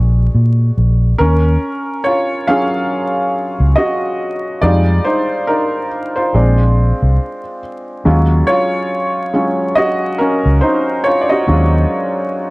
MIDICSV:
0, 0, Header, 1, 3, 480
1, 0, Start_track
1, 0, Tempo, 857143
1, 670, Time_signature, 4, 2, 24, 8
1, 7001, End_track
2, 0, Start_track
2, 0, Title_t, "Felt piano"
2, 0, Program_c, 0, 0
2, 0, Control_c, 0, 64, 127
2, 0, Note_on_c, 0, 56, 50
2, 0, Note_on_c, 0, 62, 48
2, 0, Note_on_c, 0, 66, 60
2, 647, Note_off_c, 0, 56, 0
2, 649, Note_off_c, 0, 62, 0
2, 651, Note_off_c, 0, 66, 0
2, 663, Note_on_c, 0, 70, 99
2, 676, Note_on_c, 0, 61, 72
2, 677, Control_c, 0, 64, 0
2, 759, Control_c, 0, 64, 127
2, 1131, Note_off_c, 0, 61, 0
2, 1142, Note_on_c, 0, 73, 92
2, 1155, Note_on_c, 0, 65, 69
2, 1161, Note_off_c, 0, 70, 0
2, 1376, Note_off_c, 0, 65, 0
2, 1385, Note_on_c, 0, 77, 115
2, 1390, Note_on_c, 0, 54, 48
2, 1393, Note_off_c, 0, 73, 0
2, 1394, Note_on_c, 0, 61, 50
2, 1397, Note_on_c, 0, 65, 60
2, 1398, Note_on_c, 0, 68, 80
2, 2088, Note_off_c, 0, 54, 0
2, 2090, Note_off_c, 0, 61, 0
2, 2091, Note_off_c, 0, 65, 0
2, 2092, Note_off_c, 0, 68, 0
2, 2104, Note_on_c, 0, 75, 90
2, 2116, Note_on_c, 0, 66, 69
2, 2129, Note_off_c, 0, 77, 0
2, 2571, Note_off_c, 0, 66, 0
2, 2584, Note_on_c, 0, 74, 99
2, 2589, Note_on_c, 0, 55, 58
2, 2591, Note_on_c, 0, 56, 56
2, 2595, Note_on_c, 0, 63, 67
2, 2596, Note_on_c, 0, 65, 76
2, 2598, Control_c, 0, 64, 0
2, 2601, Note_off_c, 0, 75, 0
2, 2687, Control_c, 0, 64, 127
2, 2817, Note_off_c, 0, 65, 0
2, 2825, Note_on_c, 0, 72, 84
2, 2829, Note_off_c, 0, 63, 0
2, 2834, Note_off_c, 0, 74, 0
2, 2837, Note_on_c, 0, 63, 60
2, 3057, Note_off_c, 0, 63, 0
2, 3065, Note_on_c, 0, 70, 83
2, 3075, Note_off_c, 0, 72, 0
2, 3076, Note_on_c, 0, 63, 59
2, 3287, Note_off_c, 0, 55, 0
2, 3288, Note_off_c, 0, 56, 0
2, 3434, Note_off_c, 0, 63, 0
2, 3447, Note_on_c, 0, 72, 75
2, 3459, Note_on_c, 0, 65, 59
2, 3463, Note_off_c, 0, 70, 0
2, 3550, Note_on_c, 0, 56, 53
2, 3552, Note_on_c, 0, 60, 50
2, 3556, Note_on_c, 0, 62, 62
2, 3558, Control_c, 0, 64, 0
2, 3668, Control_c, 0, 64, 127
2, 4148, Note_off_c, 0, 72, 0
2, 4154, Note_off_c, 0, 65, 0
2, 4248, Note_off_c, 0, 56, 0
2, 4249, Note_off_c, 0, 60, 0
2, 4251, Note_off_c, 0, 62, 0
2, 4508, Note_on_c, 0, 54, 60
2, 4511, Note_on_c, 0, 56, 54
2, 4513, Note_on_c, 0, 61, 48
2, 4515, Note_on_c, 0, 65, 68
2, 4518, Control_c, 0, 64, 0
2, 4607, Control_c, 0, 64, 127
2, 4742, Note_on_c, 0, 73, 101
2, 4747, Note_off_c, 0, 65, 0
2, 4755, Note_on_c, 0, 65, 83
2, 5204, Note_off_c, 0, 73, 0
2, 5207, Note_off_c, 0, 54, 0
2, 5208, Note_off_c, 0, 56, 0
2, 5209, Note_off_c, 0, 61, 0
2, 5210, Note_off_c, 0, 65, 0
2, 5228, Note_on_c, 0, 54, 44
2, 5230, Note_on_c, 0, 56, 43
2, 5232, Note_on_c, 0, 61, 47
2, 5233, Note_on_c, 0, 65, 53
2, 5447, Note_off_c, 0, 54, 0
2, 5448, Note_off_c, 0, 56, 0
2, 5449, Note_off_c, 0, 61, 0
2, 5449, Note_off_c, 0, 65, 0
2, 5462, Note_on_c, 0, 75, 101
2, 5475, Note_on_c, 0, 66, 78
2, 5689, Note_off_c, 0, 75, 0
2, 5696, Note_off_c, 0, 66, 0
2, 5703, Note_on_c, 0, 70, 81
2, 5715, Note_on_c, 0, 61, 66
2, 5936, Note_off_c, 0, 61, 0
2, 5942, Note_on_c, 0, 72, 86
2, 5954, Note_off_c, 0, 70, 0
2, 5955, Note_on_c, 0, 63, 68
2, 6176, Note_off_c, 0, 63, 0
2, 6181, Note_on_c, 0, 73, 96
2, 6193, Note_off_c, 0, 72, 0
2, 6193, Note_on_c, 0, 65, 73
2, 6209, Note_off_c, 0, 73, 0
2, 6221, Note_off_c, 0, 65, 0
2, 6278, Note_on_c, 0, 74, 67
2, 6324, Note_on_c, 0, 75, 84
2, 6330, Note_off_c, 0, 74, 0
2, 6336, Note_on_c, 0, 66, 68
2, 6425, Note_on_c, 0, 54, 60
2, 6427, Note_on_c, 0, 56, 52
2, 6429, Note_on_c, 0, 61, 48
2, 6431, Note_on_c, 0, 65, 66
2, 7001, Note_off_c, 0, 54, 0
2, 7001, Note_off_c, 0, 56, 0
2, 7001, Note_off_c, 0, 61, 0
2, 7001, Note_off_c, 0, 65, 0
2, 7001, Note_off_c, 0, 66, 0
2, 7001, Note_off_c, 0, 75, 0
2, 7001, End_track
3, 0, Start_track
3, 0, Title_t, "Fingered electric bass"
3, 0, Program_c, 1, 33
3, 0, Note_on_c, 1, 34, 94
3, 152, Note_off_c, 1, 34, 0
3, 193, Note_on_c, 1, 46, 84
3, 393, Note_off_c, 1, 46, 0
3, 434, Note_on_c, 1, 34, 77
3, 633, Note_off_c, 1, 34, 0
3, 673, Note_on_c, 1, 39, 104
3, 873, Note_off_c, 1, 39, 0
3, 2016, Note_on_c, 1, 37, 87
3, 2096, Note_off_c, 1, 37, 0
3, 2591, Note_on_c, 1, 41, 107
3, 2792, Note_off_c, 1, 41, 0
3, 3552, Note_on_c, 1, 34, 103
3, 3872, Note_off_c, 1, 34, 0
3, 3934, Note_on_c, 1, 36, 71
3, 4015, Note_off_c, 1, 36, 0
3, 4513, Note_on_c, 1, 39, 106
3, 4713, Note_off_c, 1, 39, 0
3, 5855, Note_on_c, 1, 37, 71
3, 5935, Note_off_c, 1, 37, 0
3, 6432, Note_on_c, 1, 39, 104
3, 6632, Note_off_c, 1, 39, 0
3, 7001, End_track
0, 0, End_of_file